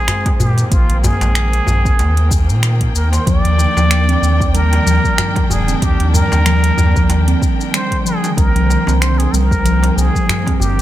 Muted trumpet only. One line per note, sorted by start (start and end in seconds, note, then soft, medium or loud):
0.00 0.41 G#4 loud
0.39 0.71 G4 medium
0.71 1.05 F4 medium
1.03 2.68 G#4 loud
2.95 3.11 A#4 medium
3.12 3.28 C5 loud
3.26 4.56 D5 loud
4.54 5.49 A#4 loud
5.50 5.83 G#4 medium
5.81 6.15 G4 medium
6.13 7.47 A#4 loud
7.73 8.03 C5 loud
8.05 8.38 G#4 medium
8.37 9.02 A#4 loud
9.01 9.20 C5 loud
9.18 9.34 G#4 medium
9.32 9.98 A#4 loud
9.96 10.59 G#4 loud
10.60 10.82 G4 loud